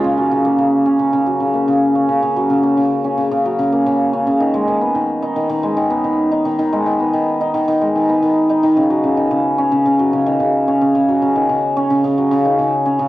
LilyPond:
\new Staff \with { instrumentName = "Hammered dulcimer" } { \clef bass \time 4/4 \key des \mixolydian \tempo 4 = 110 des16 ges16 des16 bes16 des8 des'16 des16 des16 ges16 des16 bes16 des8 des'16 des16 | des16 ges16 des16 bes16 des8 des'16 des16 des16 ges16 des16 bes16 des8 des'16 des16 | ees16 aes16 ees16 ces'16 ees8 ees'16 ees16 ees16 aes16 ees16 ces'16 ees8 ees'16 ees16 | ees16 aes16 ees16 ces'16 ees8 ees'16 ees16 ees16 aes16 ees16 ces'16 ees8 ees'16 ees16 |
des16 ges16 des16 ees16 des8 des'16 des16 des16 ges16 des16 ees16 des8 des'16 des16 | des16 ges16 des16 ees16 des8 des'16 des16 des16 ges16 des16 ees16 des8 des'16 des16 | }